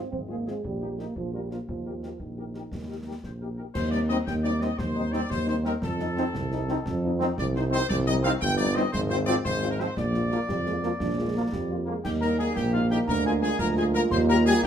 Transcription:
Already playing: euphonium C4
0.11 tuba G#1, euphonium C4, concert bass drum
0.29 french horn section F3 C4 F4, euphonium A#3, trumpet section G#4
0.46 french horn section F3 C4 F4, euphonium G#3, trumpet section G#4, snare
0.63 tuba A#1, euphonium G3, concert bass drum
0.81 french horn section A#3 D#4, trumpet section G4
0.98 french horn section A#3 D#4, euphonium A#3, trumpet section G4, snare
1.16 tuba A#1, euphonium F3, concert bass drum
1.33 euphonium G3, french horn section A#3 D4 F4, trumpet section A#4
1.50 euphonium F3, french horn section A#3 D4 F4, trumpet section A#4, snare
1.68 tuba D#2, euphonium F3, concert bass drum
1.86 french horn section A#3 D#4 G4, trumpet section A#4
2.02 french horn section A#3 D#4 G4, trumpet section A#4, snare
2.19 tuba A#1, euphonium D#3, concert bass drum
2.37 french horn section A#3 D#4 G4, trumpet section A#4
2.54 french horn section A#3 D#4 G4, trumpet section A#4, snare
2.71 tuba D#2, concert bass drum, snare
2.89 french horn section A#3 D#4 G4, trumpet section A#4
3.07 french horn section A#3 D#4 G4, trumpet section A#4
3.23 tuba A#1, trumpet section C5, concert bass drum, snare
3.41 french horn section A#3 D#4 G4, trumpet section A#4
3.58 french horn section A#3 D#4 G4, trumpet section A#4
3.75 tuba D#2, trumpet section C5, concert bass drum, snare, crash
3.91 french horn section G3 C4 D#4, trumpet section D5, snare
4.09 trombone section D#3 C4, french horn section G3 C4 D#4, trumpet section D#5, snare
4.27 tuba D#2, trumpet section G5, concert bass drum, snare
4.44 french horn section G3 C4 D#4, trumpet section D5, snare
4.61 trombone section D#3 C4, french horn section G3 C4 D#4, trumpet section D#5, snare
4.79 tuba D#2, trumpet section C5, concert bass drum, snare
4.95 french horn section G3 C4 D#4
5.12 trombone section D#3 C4, french horn section G3 C4 D#4, trumpet section D5, snare
5.30 tuba D#2, trumpet section C5, concert bass drum, snare
5.47 french horn section G3 C4 D#4, trumpet section C5, snare
5.64 trombone section D#3 C4, french horn section G3 C4 D#4, trumpet section A#4, snare
5.82 tuba F2, trumpet section A4, concert bass drum, snare
5.99 french horn section F3 C4 D#4, snare
6.17 trombone section D#3 C4, french horn section F3 C4 D#4, snare
6.34 tuba C2, concert bass drum, snare
6.52 french horn section F3 C4 D#4, snare
6.68 trombone section D#3 C4, french horn section F3 C4 D#4, snare
6.86 tuba F2, concert bass drum, snare
7.04 french horn section F3 C4 D#4
7.19 trombone section D#3 C4, french horn section F3 C4 D#4, snare
7.38 tuba C2, trumpet section D5, concert bass drum, snare
7.56 french horn section F3 C4 D#4, trumpet section C5, snare
7.71 trombone section D#3 C4, french horn section F3 C4 D#4, trumpet section C5, snare
7.89 tuba C2, trumpet section D5, concert bass drum, snare, crash
8.07 french horn section G3 C4 D#4, trumpet section D#5, snare
8.23 trombone section D#3 C4, french horn section G3 C4 D#4, trumpet section F5, snare
8.41 tuba G1, trumpet section G5, concert bass drum, snare
8.58 french horn section G3 C4 D#4, trumpet section D5, snare
8.75 trombone section D#3 C4, french horn section G3 C4 D#4, trumpet section D#5, snare
8.93 tuba G#1, trumpet section C5, concert bass drum, snare
9.10 french horn section F3 C4 F4, trumpet section C5
9.27 trombone section F3 C4, french horn section F3 C4 F4, trumpet section D5, snare
9.44 tuba G#1, trumpet section C5, concert bass drum, snare
9.62 french horn section F3 C4 F4, snare
9.71 trumpet section A#4
9.78 trombone section F3 C4, french horn section F3 C4 F4, trumpet section C5, snare
9.97 tuba A#1, trumpet section D5, concert bass drum, snare
10.14 french horn section F3 A#3 F4, snare
10.31 trombone section F3 A#3, french horn section F3 A#3 F4, snare
10.48 tuba F2, euphonium G3, concert bass drum, snare
10.66 french horn section F3 A#3 F4, euphonium G#3, snare
10.83 trombone section F3 A#3, french horn section F3 A#3 F4, euphonium A#3, snare
11.00 tuba A#1, euphonium D4, concert bass drum, snare
11.19 french horn section F3 A#3 F4, euphonium G#3
11.35 trombone section F3 A#3, french horn section F3 A#3 F4, euphonium A#3
11.52 tuba F2, euphonium G3, concert bass drum, snare
11.70 french horn section F3 A#3 F4
11.86 trombone section F3 A#3, french horn section F3 A#3 F4, euphonium G#3
12.04 tuba D#2, trombone section G3 A#3, euphonium D#4, trumpet section G4, piccolo G5, concert bass drum, snare, crash
12.21 french horn section G3 A#3 D#4, trumpet section A#4, piccolo A#5, snare
12.38 french horn section G3 A#3 D#4, trumpet section G#4, piccolo G#5, snare
12.55 tuba A#1, euphonium A#3, trumpet section G4, piccolo G5, concert bass drum, snare
12.72 french horn section G3 A#3 D#4, trumpet section F4, piccolo F5
12.90 french horn section G3 A#3 D#4, trumpet section G4, piccolo G5, snare
13.07 tuba D2, trombone section G#3, euphonium D4, trumpet section A#4, piccolo A#5, concert bass drum, snare
13.25 french horn section G#3 A#3 F4, trumpet section G#4, piccolo G#5
13.42 french horn section G#3 A#3 F4, trumpet section G#4, piccolo G#5, snare
13.59 tuba D2, euphonium F4, trumpet section A#4, piccolo A#5, concert bass drum, snare
13.76 french horn section G#3 A#3 F4, trumpet section G#4, piccolo G#5, snare
13.94 french horn section G#3 A#3 F4, trumpet section A#4, piccolo A#5, snare
14.10 tuba D#2, trombone section G3 A#3, trumpet section C5, piccolo C6, concert bass drum, snare, crash
14.29 french horn section G3 A#3 G4, trumpet section A#4, piccolo A#5, snare
14.46 french horn section G3 A#3 G4, trumpet section G#4, piccolo G#5, snare
14.63 tuba A#1, euphonium D#4, trumpet section G4, piccolo G5, concert bass drum, snare

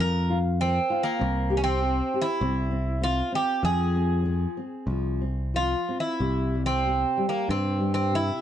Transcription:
0.00 picked electric bass F2, nylon-string guitar A#3, bouzouki A#4
0.30 nylon-string guitar F4
0.60 nylon-string guitar A#3, bouzouki C4
0.90 nylon-string guitar F4
1.03 bouzouki A#3
1.19 picked electric bass C2, nylon-string guitar C4
1.50 nylon-string guitar G4
1.57 bouzouki C#4
1.64 bouzouki C4
1.82 nylon-string guitar C4
2.14 nylon-string guitar G4
2.22 bouzouki E4
2.41 picked electric bass C2, nylon-string guitar C4
2.71 nylon-string guitar C4
3.01 nylon-string guitar C4, bouzouki F4
3.32 nylon-string guitar C4, bouzouki G4
3.63 picked electric bass F2, nylon-string guitar F3, bouzouki G#4
3.96 nylon-string guitar C4
4.25 nylon-string guitar F3
4.57 nylon-string guitar C4
4.87 picked electric bass C2, nylon-string guitar F3
5.21 nylon-string guitar C4
5.54 nylon-string guitar F3, bouzouki F4
5.89 nylon-string guitar C4
6.00 bouzouki E4
6.20 picked electric bass C2, nylon-string guitar C3
6.55 nylon-string guitar G3
6.66 bouzouki C4
6.87 nylon-string guitar C3
7.17 nylon-string guitar G3
7.29 bouzouki A#3
7.47 picked electric bass G2, nylon-string guitar C3, bouzouki C4
7.79 nylon-string guitar G3
7.94 bouzouki C4
8.11 nylon-string guitar C3
8.15 bouzouki E4

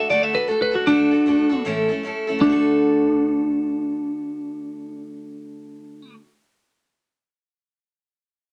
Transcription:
Already playing: steel-string acoustic guitar F#4
0.10 steel-string acoustic guitar D3 A3 D4 F#4 A4, clean electric guitar D5
0.23 clean electric guitar E5
0.33 steel-string acoustic guitar D4 F#4 A4, clean electric guitar B4
0.48 steel-string acoustic guitar A3 D4 F#4 A4, clean electric guitar A4
0.62 clean electric guitar B4
0.71 steel-string acoustic guitar D4 F#4 A4
0.75 clean electric guitar F#4
0.87 steel-string acoustic guitar D3 A3 D4 F#4 A4, clean electric guitar D4
1.11 steel-string acoustic guitar D4 F#4 A4
1.26 steel-string acoustic guitar A3 D4 F#4 A4
1.49 steel-string acoustic guitar D4 F#4 A4
1.65 steel-string acoustic guitar A2 E3 A3 C#4 E4 A4
1.88 steel-string acoustic guitar A3 C#4 E4 A4
2.03 steel-string acoustic guitar A3 C#4 E4 A4
2.27 steel-string acoustic guitar A3 C#4 E4 A4
2.39 steel-string acoustic guitar D3, clean electric guitar D4
2.43 steel-string acoustic guitar A3 D4
2.49 steel-string acoustic guitar F#4 A4

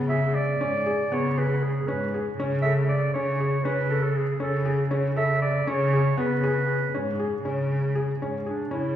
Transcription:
Already playing: cello C#3
0.09 felt piano G#4, clarinet E5
0.35 clarinet D5
0.61 cello G#2, felt piano C#4
0.86 felt piano G#4
1.11 cello C#3, felt piano B3, clarinet C#5
1.38 felt piano G#4, clarinet B4
1.63 clarinet G#4
1.87 cello G#2, felt piano C#4, clarinet B4
2.14 felt piano G#4
2.38 cello C#3, felt piano C#4
2.62 felt piano A4, clarinet E5
2.89 clarinet D5
3.13 cello C#3, felt piano C#4, clarinet C#5
3.40 felt piano G#4
3.64 cello C#3, felt piano C#4, clarinet B4
3.90 felt piano A4
4.03 clarinet A4
4.16 clarinet G#4
4.39 cello C#3, felt piano C#4, clarinet A4
4.65 felt piano G#4
4.90 cello C#3, felt piano C#4
5.16 felt piano A4, clarinet E5
5.41 clarinet D5
5.66 cello C#3, felt piano C#4, clarinet C#5
5.93 felt piano G#4
6.17 cello C#3, felt piano B3, clarinet B4
6.43 felt piano G#4
6.93 cello G#2, felt piano C#4
7.19 felt piano G#4
7.43 cello C#3, felt piano C#4
7.95 felt piano G#4
8.20 cello G#2, felt piano C#4
8.46 clarinet D4, felt piano G#4
8.71 cello C#3, felt piano C#4, clarinet E4

